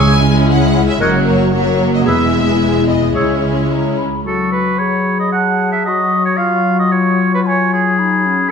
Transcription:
Already playing: cello section C#2, double bass section C#2, timpani C#3, french horn section G#3 E4, viola section G#3 C#4, violin section E4 G#4 G#5, clarinet G#4, oboe C#5, flute E6
0.51 violin section F#5
0.89 violin section E5
1.00 double bass section F#1, cello section F#2, viola section F#3 A#3, french horn section A#3 F#4, violin section F#4 A#4 D#5, clarinet A#4, oboe C#5, flute F#6
1.26 violin section C#5
1.52 viola section F#3 A#3, french horn section A#3 F#4, violin section F#4 A#4 C#5
1.94 violin section D#5
2.05 double bass section E1, cello section E2, viola section G#3 B3, french horn section G#3 E4, violin section E4 G#4 E5, clarinet G#4, oboe B4, flute E6
2.87 violin section D#5
3.14 cello section C#2, double bass section C#2, viola section G#3 C#4, french horn section G#3 E4, violin section E4 G#4 C#5, clarinet G#4, oboe C#5, flute E6
3.71 flute A#5
3.98 flute B5
4.24 french horn section F#3, clarinet F#4, oboe A4, flute C#6
4.52 oboe B4
4.79 clarinet G#4, oboe C#5, flute B5
5.20 oboe D#5
5.32 oboe F#5, flute A5
5.72 oboe E5
5.85 clarinet F#4, oboe D#5, flute C#6
6.26 oboe C#5
6.37 clarinet F4, oboe F5
6.79 oboe D#5
6.92 clarinet F4, oboe C#5, flute C#6
7.35 oboe B4
7.46 oboe C#5, flute G#5
7.73 oboe G#4
7.99 clarinet D#4, flute B5
8.26 clarinet C#4

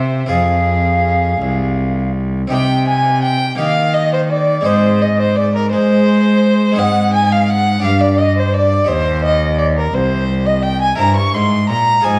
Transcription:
Already playing: harpsichord C3 C4 E4 A#4, cello C3, violin C5, recorder E5
0.26 cello F2, harpsichord F2 C4 F4 G#4, recorder F5
0.31 violin G#4
1.41 cello C2, harpsichord C2
2.48 harpsichord C4 D#4 G4, recorder G5
2.52 cello C3, harpsichord C3, violin G5
2.87 recorder G#5, violin G#5
3.22 recorder G5, violin G5
3.55 cello D#3, harpsichord A#3 D#4 G4, violin F5, recorder F5
3.60 harpsichord D#3
3.94 violin D#5, recorder D#5
4.12 recorder C5, violin C5
4.30 violin D5, recorder D5
4.61 harpsichord G#3 C4 D#4
4.65 cello G#2, harpsichord G#2 G#4, violin C5, recorder C5
5.01 recorder D#5, violin D#5
5.20 recorder C5, violin C5
5.36 violin D5, recorder D5
5.55 violin A#4, recorder A#4
5.71 cello G#3, harpsichord G#3, violin C5, recorder C5
6.72 harpsichord G#3 C4 D#4
6.76 harpsichord G#2 G#4, cello G#2, violin F#5, recorder G5
6.84 recorder F#5
7.13 violin G#5, recorder G#5
7.32 violin F5, recorder F5
7.50 recorder F#5, violin F#5
7.80 harpsichord D4 G4 B4
7.84 cello G2, harpsichord G2, violin F5, recorder F5
8.01 violin D5, recorder D5
8.18 violin D#5, recorder D#5
8.38 violin C5, recorder C5
8.55 violin D5, recorder D5
8.84 harpsichord D#4 G4 C5, violin C5
8.89 harpsichord D#2, cello D#2, recorder C#5
8.94 recorder C5
9.24 violin D#5, recorder E5
9.29 recorder D#5
9.58 violin D5, recorder D5
9.78 violin A#4, recorder A#4
9.94 harpsichord C2, cello C2, violin C5, recorder C5
10.46 violin D#5, recorder D#5
10.63 recorder G5, violin G5
10.81 recorder G#5, violin G#5
10.95 harpsichord E4 A#4 C5, violin A#5, recorder A#5
10.99 cello G2, harpsichord G2
11.16 violin C#6, recorder C#6
11.35 cello G#2, harpsichord G#2, recorder C6, violin C6
11.70 harpsichord A#2, cello A#2, violin A#5, recorder A#5
12.01 harpsichord F4 G#4 C5, violin G#5
12.05 harpsichord G#2, cello G#2, recorder A#5
12.09 recorder G#5

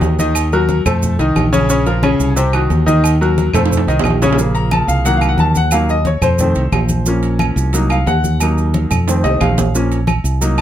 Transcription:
Already playing: grand piano D#3 D#4 F#4
0.01 fingered electric bass D#2, high conga, low timbale, low agogo, maracas
0.19 grand piano D#3 D#4 D#5, high conga, maracas
0.35 high conga, low agogo, claves, maracas
0.52 grand piano F#3 F#4 A#4, high conga, maracas
0.69 high conga, low agogo, maracas
0.86 fingered electric bass F2, grand piano A3 A4 C5, high conga, low conga, low agogo, claves, maracas
1.02 high conga, low conga, maracas
1.19 fingered electric bass C2, grand piano D#3 D#4 D#5, high conga, low agogo, maracas
1.36 fingered electric bass A#1, high conga, low timbale, low agogo, claves, maracas
1.53 grand piano C#3 C#4 C#5, high conga, maracas
1.70 grand piano C#3 C#4 C#5, maracas
1.86 grand piano F3 F4 A#4, high conga, low agogo, maracas
2.03 grand piano C#3 C#4 C#5, high conga, low agogo, claves, maracas
2.20 fingered electric bass C2, high conga, maracas
2.36 grand piano C3 C4 C5, high conga, low agogo, maracas
2.53 grand piano D#3 D#4 F#4, high conga, low agogo, claves, maracas
2.70 fingered electric bass D#2, high conga, low agogo, maracas
2.86 grand piano D#3 D#4 D#5, high conga, maracas
3.04 low agogo, claves, maracas
3.21 grand piano F#3 F#4 A#4, high conga, maracas
3.38 high conga, low agogo, maracas
3.53 fingered electric bass F2, grand piano A3 A4 C5, high conga, low conga, high timbale, low agogo, claves, maracas
3.66 high timbale
3.71 high conga, low conga, maracas
3.77 high timbale
3.87 fingered electric bass C2, grand piano D#3 D#4 D#5, high conga, low agogo, maracas
3.99 low timbale
4.03 fingered electric bass A#1, high conga, low agogo, claves, maracas
4.10 low timbale
4.22 grand piano C#3 C#4 C#5, high conga, low timbale, maracas
4.33 low timbale
4.38 grand piano C#3 F3 A#3, maracas
4.55 grand piano A#5, high conga, low agogo, maracas
4.71 grand piano A5, high conga, low agogo, claves, maracas
4.88 fingered electric bass C2, grand piano F5, high conga, maracas
5.05 grand piano D#3 F#3 A#3 F#5, high conga, low agogo, maracas
5.17 grand piano F5
5.21 high conga, low agogo, claves, maracas
5.29 grand piano F#5
5.37 fingered electric bass D#2, grand piano A5, high conga, low agogo, maracas
5.55 grand piano F#5, high conga, maracas
5.71 grand piano D#3 F#3 A#3 F5, high conga, low agogo, claves, maracas
5.89 grand piano D#5, high conga, maracas
6.05 grand piano C#5, high conga, low agogo, maracas
6.21 fingered electric bass F2, grand piano C5, high conga, low conga, low agogo, claves, maracas
6.39 grand piano D#3 A3 C4, high conga, low conga, maracas
6.55 fingered electric bass C2, high conga, low agogo, maracas
6.72 fingered electric bass A#1, high conga, low timbale, low agogo, claves, maracas
6.89 high conga, maracas
7.06 grand piano F3 A#3 C#4, high conga, maracas
7.23 high conga, low agogo, maracas
7.39 high conga, low agogo, claves, maracas
7.56 fingered electric bass C2, high conga, maracas
7.73 grand piano F#3 A#3 D#4, high conga, low agogo, maracas
7.90 grand piano F5, high conga, low agogo, claves, maracas
8.06 fingered electric bass D#2, grand piano F#5, high conga, low timbale, low agogo, maracas
8.24 high conga, maracas
8.40 grand piano F#3 A#3 D#4, high conga, low agogo, claves, maracas
8.58 high conga, maracas
8.74 high conga, low agogo, maracas
8.91 fingered electric bass F2, high conga, low conga, low agogo, claves, maracas
9.07 grand piano D#3 A3 C4, high conga, high timbale, maracas
9.24 fingered electric bass C2, grand piano D#5, high conga, low timbale, low agogo, maracas
9.41 fingered electric bass A#1, grand piano F5, high conga, low timbale, low agogo, claves, maracas
9.58 high conga, low timbale, maracas
9.74 grand piano F3 A#3 C#4, high conga, maracas
9.91 high conga, low agogo, maracas
10.07 high conga, low agogo, claves, maracas
10.24 fingered electric bass C2, high conga, maracas
10.41 grand piano F#3 A#3 D#4, high conga, low agogo, maracas
10.58 high conga, low agogo, claves

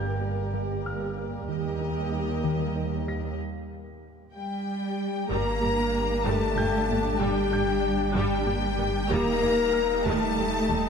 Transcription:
Already playing: double bass section G1, cello section G2, ambient pad G3 G4 A#4 G5, french horn section A#3 G4, viola section A#3 G4, violin section A#4 D5, grand piano G6 A6
0.21 synth arpeggio sound G4
0.54 synth arpeggio sound G3
0.85 synth arpeggio sound G4, grand piano F6
1.17 synth arpeggio sound A#3
1.48 cello section D#2, double bass section D#2, synth arpeggio sound D#3, ambient pad G3 G4 A#4 G5, french horn section A#3 G4, viola section A#3 G4, violin section A#4 D#5
1.81 synth arpeggio sound D#4
2.12 synth arpeggio sound D#4
2.44 synth arpeggio sound D#3
2.76 synth arpeggio sound D#4
3.08 synth arpeggio sound G3, grand piano A#6
4.34 cello section G3, french horn section G4, violin section G5
5.29 sub bass G1, double bass section G2, synth arpeggio sound G3, viola section G3 D4, ambient pad G3 D4 G4 G5, cello section A#3, french horn section A#4, violin section A#5
5.61 double bass section G2, viola section G3, synth arpeggio sound G4
6.24 double bass section G2, synth arpeggio sound G3, viola section G3, cello section A3, french horn section A4, violin section A5
6.56 double bass section G2, synth arpeggio sound A#2, viola section G3, grand piano G5 G6
6.88 double bass section G2, synth arpeggio sound A#2, viola section G3
7.19 double bass section G2, synth arpeggio sound G3, cello section G3, viola section G3, french horn section G4, violin section G5
7.51 double bass section G2, viola section G3, synth arpeggio sound G4, grand piano G6
8.14 double bass section G2, synth arpeggio sound G3, cello section G3, viola section G3, french horn section G4, violin section G5
8.46 double bass section G2, viola section G3, synth arpeggio sound A#3
8.78 double bass section G2, viola section G3, synth arpeggio sound A#3
9.10 sub bass D#1, double bass section D#2, synth arpeggio sound D#3, viola section G3 D#4, ambient pad G3 D#4 G4 G5, cello section A#3, french horn section A#4, violin section A#5
9.41 double bass section D#2, viola section G3, synth arpeggio sound D#4
9.73 grand piano F6
10.05 double bass section D#2, synth arpeggio sound D#3, viola section G3, cello section A3, french horn section A4, violin section A5
10.37 double bass section D#2, synth arpeggio sound G3, viola section G3
10.69 double bass section D#2, synth arpeggio sound G3, viola section G3

